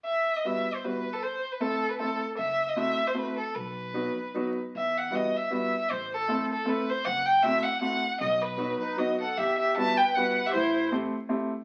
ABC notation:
X:1
M:3/4
L:1/16
Q:"Swing" 1/4=156
K:Em
V:1 name="Violin"
e3 ^d e3 c B3 A | c3 B A3 B A3 z | e3 ^d e3 c B2 A2 | B8- B2 z2 |
e2 f2 ^d2 e2 e4 | c2 A4 A2 B2 c2 | f2 g2 e2 f2 f4 | ^d2 B4 B2 d2 f2 |
e2 e2 a2 g2 f3 e | c4 z8 |]
V:2 name="Accordion"
z12 | z12 | z12 | z12 |
z12 | z12 | z12 | z6 ^D2 F2 A2 |
G2 G2 e2 B2 B3 G | E4 z8 |]
V:3 name="Upright piano"
z4 [G,B,EF]2 z2 [G,B,EF]2 z2 | z4 [A,CEA]2 z2 [A,CEA]2 z2 | z4 [A,CEF]2 z2 [A,CEF]2 z2 | z4 [F,B,^DF]2 z2 [F,B,DF]2 z2 |
z4 [G,B,EF]2 z2 [G,B,EF]2 z2 | z4 [A,CEA]2 z2 [A,CEA]2 z2 | z4 [A,CEF]2 z2 [A,CEF]2 z2 | z4 [F,B,^DF]2 z2 [F,B,DF]2 z2 |
z4 [G,B,EF]2 z2 [G,B,EF]2 z2 | z4 [A,CEG]2 z2 [A,CEG]2 z2 |]
V:4 name="Upright bass" clef=bass
z12 | z12 | F,,,8 z4 | B,,,8 z4 |
E,,8 z4 | A,,,8 z4 | F,,,8 z4 | B,,,8 z4 |
E,,8 z4 | A,,,8 z4 |]